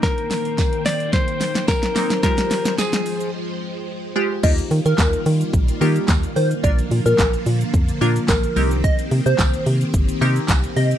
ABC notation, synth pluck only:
X:1
M:4/4
L:1/16
Q:1/4=109
K:Eb
V:1 name="Synth pluck"
[B,CE]4 z8 z2 [B,CE] z | [A,FG]4 z8 z2 [A,FG] z | [B,EFG]4 z6 [B,EFG]3 z3 | [B,DFB]4 z6 [B,DFB]3 z [B,CEG]2- |
[B,CEG]4 z6 [B,CEG]3 z3 |]